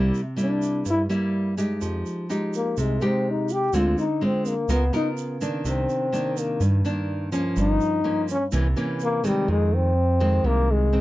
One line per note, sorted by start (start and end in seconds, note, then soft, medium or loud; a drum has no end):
0.00 0.12 C2 loud
0.00 0.83 C3 medium
0.00 0.20 G3 medium
0.00 0.20 A#3 medium
0.00 0.21 E4 medium
0.14 shaker soft
0.36 1.05 G3 medium
0.36 1.05 A#3 medium
0.36 1.05 E4 medium
0.36 shaker medium
0.42 0.85 D4 medium
0.62 shaker medium
0.85 1.79 G2 medium
0.85 1.08 G2 medium
0.85 shaker medium
0.90 1.03 E4 medium
1.09 1.53 G3 medium
1.09 1.54 A#3 medium
1.09 1.54 E4 medium
1.09 shaker soft
1.57 2.25 G#3 medium
1.57 2.26 D#4 medium
1.57 2.26 G4 medium
1.57 shaker medium
1.81 2.04 F2 loud
1.81 2.75 F3 medium
1.81 shaker medium
2.06 shaker soft
2.29 2.97 G#3 soft
2.29 2.98 D#4 medium
2.29 2.98 G4 medium
2.29 shaker medium
2.54 2.83 A#3 medium
2.54 shaker medium
2.77 3.00 C2 medium
2.77 3.71 C3 medium
2.77 shaker medium
2.81 3.06 G#3 medium
3.01 3.69 G#3 medium
3.01 3.31 C4 medium
3.01 3.69 D#4 medium
3.01 3.70 G4 medium
3.01 shaker soft
3.30 3.54 D#4 medium
3.49 3.79 G4 loud
3.49 shaker medium
3.73 3.95 D2 loud
3.73 4.67 D3 medium
3.73 4.04 G#3 medium
3.73 4.04 C4 medium
3.73 4.05 F4 medium
3.73 3.98 F4 medium
3.73 shaker medium
3.98 4.26 D#4 medium
3.98 shaker soft
4.21 4.53 G#3 medium
4.21 4.54 C4 medium
4.21 4.49 C4 medium
4.21 4.54 F4 medium
4.46 4.74 A#3 medium
4.46 shaker medium
4.68 4.91 C#2 medium
4.68 5.62 C#3 medium
4.68 4.83 B3 medium
4.68 4.94 B3 medium
4.68 4.83 F4 medium
4.68 4.83 A#4 medium
4.68 shaker medium
4.93 5.37 B3 medium
4.93 5.09 D#4 medium
4.93 5.37 F4 medium
4.93 5.37 A#4 medium
4.93 shaker soft
5.17 shaker medium
5.41 6.09 D#3 medium
5.41 6.09 A#3 medium
5.41 6.09 D4 medium
5.41 shaker medium
5.65 5.87 C2 loud
5.65 6.58 C3 medium
5.65 shaker medium
5.69 6.41 C4 medium
5.89 shaker soft
6.12 6.81 D#3 medium
6.12 6.81 A#3 medium
6.12 6.81 D4 medium
6.12 shaker medium
6.37 6.62 A#3 medium
6.37 shaker medium
6.60 6.83 G2 medium
6.60 7.54 G2 medium
6.60 shaker medium
6.85 7.29 D#3 medium
6.85 7.29 A#3 medium
6.85 7.29 D4 medium
6.85 shaker soft
7.32 8.00 F3 medium
7.32 8.01 A#3 medium
7.32 8.01 C#4 medium
7.32 shaker medium
7.57 7.79 G1 loud
7.57 8.50 G2 medium
7.57 shaker medium
7.61 8.26 D#4 loud
7.81 shaker soft
8.04 8.36 F3 soft
8.04 8.37 A#3 medium
8.04 8.37 C#4 medium
8.28 8.45 C#4 medium
8.28 shaker medium
8.52 8.75 C2 medium
8.52 9.46 C3 medium
8.52 8.66 E3 medium
8.52 8.66 A#3 medium
8.52 8.67 C#4 medium
8.52 shaker medium
8.76 9.20 E3 medium
8.76 9.21 A#3 medium
8.76 9.21 C#4 medium
8.76 shaker soft
9.00 9.28 A#3 loud
9.00 shaker medium
9.24 9.92 D#3 medium
9.24 9.49 G3 medium
9.24 9.92 G#3 medium
9.24 9.92 C4 medium
9.24 shaker medium
9.48 10.42 F2 medium
9.48 10.40 F2 loud
9.48 9.76 G#3 medium
9.74 10.49 C4 medium
10.20 10.88 D#3 medium
10.20 10.88 G#3 medium
10.20 10.89 C4 medium
10.44 11.01 C2 medium
10.44 11.01 C3 medium
10.44 10.73 A#3 loud
10.71 11.01 G#3 medium
10.93 11.01 D#3 medium
10.93 11.01 G#3 soft
10.93 11.01 C4 medium